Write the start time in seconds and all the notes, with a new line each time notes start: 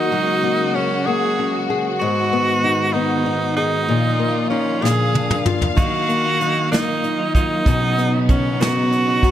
Already playing: D#3 F#3 A#3 D#4 F#4
0.12 C#3 F#3 G#3
0.44 A#3
0.75 C#4
1.06 A#3 G#4
1.39 C#4
1.70 G#4
2.00 G#2 D#3 G#3 B3 F#4
2.33 B3
2.64 D#4
2.93 B3 D#4
3.26 D#4
3.56 D#4 G#4
3.89 A#2 F3 A#3 F4
4.19 A#3
4.50 C#4 D#4
4.81 A#2 D3 G#4 F5
4.85 snare
5.14 D4, high tom
5.31 mid tom
5.45 F4, mid tom
5.62 floor tom
5.76 D#3 F#3 A#3 D#4 F4 F#4, kick, closed hi-hat
5.94 A#3 D#4
6.08 A#3, closed hi-hat
6.25 A#3 D#4 F4
6.40 F#3 A#3 D#4, closed hi-hat
6.72 D#3 F#3 A#3 D#4 F4, snare, closed hi-hat
6.88 A#3 D#4 F4
7.04 D#4, closed hi-hat
7.19 A#3 D#4 F4
7.35 F#3 A#3 D#4 F4, kick, closed hi-hat
7.65 B2 C#3 D#3 B3 C#4 D#4 F#4, kick, closed hi-hat
7.81 B3 C#4 F#4
7.98 B3, closed hi-hat
8.13 B3 C#4 F#4
8.29 D#3 B3 C#4 F#4, kick, closed hi-hat
8.60 B2 D#3 B3 C#4 F#4, snare, closed hi-hat
8.76 B3 C#4 F#4
8.92 C#4, closed hi-hat
9.07 B3 C#4 F#4
9.22 D#3 B3 C#4 F#4, kick, closed hi-hat